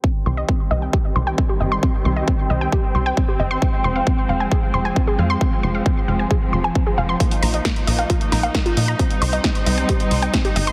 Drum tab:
HH |----------------|----------------|----------------|----------------|
SD |----------------|----------------|----------------|----------------|
BD |o---o---o---o---|o---o---o---o---|o---o---o---o---|o---o---o---o---|

HH |xxoxxxoxxxoxxxox|xxoxxxoxxxoxxxox|
SD |----o-----o-o---|----o-------o---|
BD |o---o---o---o---|o---o---o---o---|